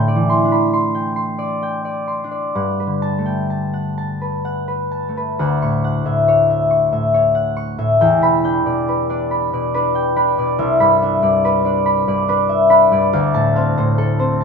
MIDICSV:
0, 0, Header, 1, 2, 480
1, 0, Start_track
1, 0, Key_signature, 1, "major"
1, 0, Tempo, 882353
1, 876, Tempo, 947867
1, 1350, Time_signature, 3, 2, 24, 8
1, 2795, Key_signature, 2, "major"
1, 2796, Tempo, 883652
1, 3276, Tempo, 867052
1, 5196, Tempo, 845070
1, 7858, End_track
2, 0, Start_track
2, 0, Title_t, "Harp"
2, 0, Program_c, 0, 46
2, 0, Note_on_c, 0, 45, 72
2, 0, Note_on_c, 0, 62, 51
2, 0, Note_on_c, 0, 79, 58
2, 0, Note_on_c, 0, 84, 84
2, 44, Note_on_c, 0, 74, 53
2, 84, Note_on_c, 0, 52, 46
2, 154, Note_off_c, 0, 84, 0
2, 161, Note_on_c, 0, 84, 72
2, 234, Note_off_c, 0, 62, 0
2, 241, Note_on_c, 0, 62, 52
2, 282, Note_on_c, 0, 83, 46
2, 393, Note_off_c, 0, 84, 0
2, 399, Note_on_c, 0, 84, 59
2, 480, Note_off_c, 0, 83, 0
2, 508, Note_off_c, 0, 79, 0
2, 514, Note_on_c, 0, 79, 47
2, 625, Note_off_c, 0, 84, 0
2, 631, Note_on_c, 0, 84, 50
2, 747, Note_off_c, 0, 74, 0
2, 753, Note_on_c, 0, 74, 50
2, 877, Note_off_c, 0, 79, 0
2, 883, Note_on_c, 0, 79, 57
2, 990, Note_off_c, 0, 74, 0
2, 997, Note_on_c, 0, 74, 43
2, 1106, Note_off_c, 0, 84, 0
2, 1112, Note_on_c, 0, 84, 53
2, 1189, Note_off_c, 0, 62, 0
2, 1195, Note_on_c, 0, 62, 49
2, 1225, Note_off_c, 0, 74, 0
2, 1231, Note_on_c, 0, 74, 42
2, 1353, Note_on_c, 0, 43, 55
2, 1356, Note_on_c, 0, 78, 46
2, 1371, Note_off_c, 0, 84, 0
2, 1375, Note_off_c, 0, 52, 0
2, 1376, Note_off_c, 0, 45, 0
2, 1478, Note_on_c, 0, 71, 44
2, 1513, Note_on_c, 0, 50, 39
2, 1590, Note_on_c, 0, 81, 62
2, 1673, Note_on_c, 0, 57, 43
2, 1703, Note_off_c, 0, 79, 0
2, 1709, Note_on_c, 0, 79, 38
2, 1827, Note_off_c, 0, 81, 0
2, 1834, Note_on_c, 0, 81, 49
2, 1918, Note_off_c, 0, 79, 0
2, 1945, Note_off_c, 0, 78, 0
2, 1952, Note_on_c, 0, 78, 45
2, 2069, Note_off_c, 0, 81, 0
2, 2075, Note_on_c, 0, 81, 46
2, 2188, Note_off_c, 0, 71, 0
2, 2194, Note_on_c, 0, 71, 39
2, 2307, Note_off_c, 0, 78, 0
2, 2313, Note_on_c, 0, 78, 51
2, 2423, Note_off_c, 0, 71, 0
2, 2430, Note_on_c, 0, 71, 41
2, 2543, Note_off_c, 0, 81, 0
2, 2549, Note_on_c, 0, 81, 46
2, 2630, Note_off_c, 0, 57, 0
2, 2636, Note_on_c, 0, 57, 40
2, 2674, Note_off_c, 0, 71, 0
2, 2680, Note_on_c, 0, 71, 46
2, 2785, Note_off_c, 0, 78, 0
2, 2791, Note_on_c, 0, 38, 61
2, 2792, Note_on_c, 0, 78, 52
2, 2814, Note_off_c, 0, 50, 0
2, 2814, Note_off_c, 0, 71, 0
2, 2816, Note_off_c, 0, 43, 0
2, 2915, Note_on_c, 0, 85, 66
2, 2917, Note_on_c, 0, 45, 41
2, 3029, Note_off_c, 0, 78, 0
2, 3036, Note_on_c, 0, 78, 50
2, 3143, Note_off_c, 0, 45, 0
2, 3148, Note_on_c, 0, 45, 47
2, 3153, Note_on_c, 0, 76, 52
2, 3197, Note_off_c, 0, 62, 0
2, 3236, Note_off_c, 0, 74, 0
2, 3274, Note_on_c, 0, 73, 60
2, 3388, Note_off_c, 0, 76, 0
2, 3395, Note_on_c, 0, 76, 46
2, 3503, Note_off_c, 0, 85, 0
2, 3509, Note_on_c, 0, 85, 50
2, 3622, Note_off_c, 0, 76, 0
2, 3624, Note_off_c, 0, 45, 0
2, 3629, Note_on_c, 0, 45, 39
2, 3631, Note_on_c, 0, 76, 44
2, 3743, Note_off_c, 0, 73, 0
2, 3750, Note_on_c, 0, 73, 59
2, 3857, Note_off_c, 0, 78, 0
2, 3864, Note_on_c, 0, 78, 53
2, 3978, Note_off_c, 0, 85, 0
2, 3985, Note_on_c, 0, 85, 58
2, 4099, Note_off_c, 0, 76, 0
2, 4100, Note_off_c, 0, 45, 0
2, 4105, Note_on_c, 0, 45, 53
2, 4107, Note_on_c, 0, 76, 52
2, 4230, Note_on_c, 0, 40, 62
2, 4230, Note_on_c, 0, 79, 59
2, 4245, Note_off_c, 0, 81, 0
2, 4247, Note_off_c, 0, 78, 0
2, 4248, Note_off_c, 0, 85, 0
2, 4249, Note_off_c, 0, 38, 0
2, 4249, Note_off_c, 0, 45, 0
2, 4249, Note_off_c, 0, 57, 0
2, 4249, Note_off_c, 0, 73, 0
2, 4347, Note_on_c, 0, 47, 44
2, 4351, Note_on_c, 0, 83, 69
2, 4462, Note_off_c, 0, 79, 0
2, 4466, Note_on_c, 0, 62, 43
2, 4471, Note_on_c, 0, 79, 58
2, 4584, Note_off_c, 0, 47, 0
2, 4590, Note_on_c, 0, 47, 42
2, 4590, Note_on_c, 0, 74, 49
2, 4716, Note_on_c, 0, 71, 53
2, 4827, Note_off_c, 0, 62, 0
2, 4827, Note_off_c, 0, 74, 0
2, 4832, Note_on_c, 0, 62, 46
2, 4835, Note_on_c, 0, 74, 49
2, 4944, Note_off_c, 0, 83, 0
2, 4950, Note_on_c, 0, 83, 52
2, 5067, Note_off_c, 0, 47, 0
2, 5068, Note_off_c, 0, 74, 0
2, 5073, Note_on_c, 0, 47, 45
2, 5076, Note_on_c, 0, 74, 52
2, 5183, Note_off_c, 0, 71, 0
2, 5184, Note_off_c, 0, 62, 0
2, 5189, Note_on_c, 0, 62, 51
2, 5191, Note_on_c, 0, 71, 62
2, 5300, Note_off_c, 0, 79, 0
2, 5307, Note_on_c, 0, 79, 53
2, 5421, Note_off_c, 0, 83, 0
2, 5423, Note_off_c, 0, 62, 0
2, 5429, Note_on_c, 0, 62, 59
2, 5430, Note_on_c, 0, 83, 66
2, 5546, Note_off_c, 0, 74, 0
2, 5547, Note_off_c, 0, 47, 0
2, 5553, Note_on_c, 0, 47, 51
2, 5554, Note_on_c, 0, 74, 52
2, 5663, Note_off_c, 0, 76, 0
2, 5668, Note_on_c, 0, 36, 68
2, 5671, Note_on_c, 0, 76, 55
2, 5694, Note_off_c, 0, 40, 0
2, 5694, Note_off_c, 0, 47, 0
2, 5784, Note_off_c, 0, 83, 0
2, 5789, Note_on_c, 0, 43, 53
2, 5792, Note_on_c, 0, 83, 74
2, 5909, Note_off_c, 0, 76, 0
2, 5910, Note_off_c, 0, 62, 0
2, 5915, Note_on_c, 0, 62, 53
2, 5918, Note_on_c, 0, 76, 52
2, 6025, Note_off_c, 0, 74, 0
2, 6026, Note_off_c, 0, 43, 0
2, 6031, Note_on_c, 0, 43, 51
2, 6034, Note_on_c, 0, 74, 57
2, 6151, Note_off_c, 0, 71, 0
2, 6158, Note_on_c, 0, 71, 63
2, 6266, Note_off_c, 0, 62, 0
2, 6266, Note_off_c, 0, 74, 0
2, 6271, Note_on_c, 0, 62, 49
2, 6274, Note_on_c, 0, 74, 57
2, 6385, Note_off_c, 0, 83, 0
2, 6391, Note_on_c, 0, 83, 62
2, 6508, Note_off_c, 0, 43, 0
2, 6509, Note_off_c, 0, 74, 0
2, 6514, Note_on_c, 0, 43, 48
2, 6518, Note_on_c, 0, 74, 54
2, 6627, Note_off_c, 0, 62, 0
2, 6629, Note_off_c, 0, 71, 0
2, 6633, Note_on_c, 0, 62, 62
2, 6637, Note_on_c, 0, 71, 67
2, 6744, Note_off_c, 0, 76, 0
2, 6751, Note_on_c, 0, 76, 66
2, 6860, Note_off_c, 0, 62, 0
2, 6862, Note_off_c, 0, 83, 0
2, 6866, Note_on_c, 0, 62, 62
2, 6870, Note_on_c, 0, 83, 75
2, 6986, Note_off_c, 0, 43, 0
2, 6987, Note_off_c, 0, 74, 0
2, 6991, Note_on_c, 0, 43, 58
2, 6996, Note_on_c, 0, 74, 61
2, 7115, Note_on_c, 0, 38, 74
2, 7115, Note_on_c, 0, 77, 69
2, 7126, Note_off_c, 0, 36, 0
2, 7126, Note_off_c, 0, 79, 0
2, 7128, Note_off_c, 0, 83, 0
2, 7129, Note_off_c, 0, 76, 0
2, 7130, Note_off_c, 0, 43, 0
2, 7131, Note_off_c, 0, 71, 0
2, 7232, Note_on_c, 0, 45, 59
2, 7235, Note_on_c, 0, 81, 86
2, 7351, Note_off_c, 0, 77, 0
2, 7355, Note_on_c, 0, 60, 59
2, 7360, Note_on_c, 0, 77, 59
2, 7477, Note_off_c, 0, 45, 0
2, 7479, Note_on_c, 0, 72, 66
2, 7483, Note_on_c, 0, 45, 61
2, 7597, Note_on_c, 0, 69, 74
2, 7711, Note_off_c, 0, 72, 0
2, 7712, Note_off_c, 0, 60, 0
2, 7717, Note_on_c, 0, 60, 58
2, 7719, Note_on_c, 0, 72, 61
2, 7832, Note_off_c, 0, 81, 0
2, 7838, Note_on_c, 0, 81, 59
2, 7858, Note_off_c, 0, 38, 0
2, 7858, Note_off_c, 0, 45, 0
2, 7858, Note_off_c, 0, 60, 0
2, 7858, Note_off_c, 0, 62, 0
2, 7858, Note_off_c, 0, 69, 0
2, 7858, Note_off_c, 0, 72, 0
2, 7858, Note_off_c, 0, 74, 0
2, 7858, Note_off_c, 0, 77, 0
2, 7858, Note_off_c, 0, 81, 0
2, 7858, End_track
0, 0, End_of_file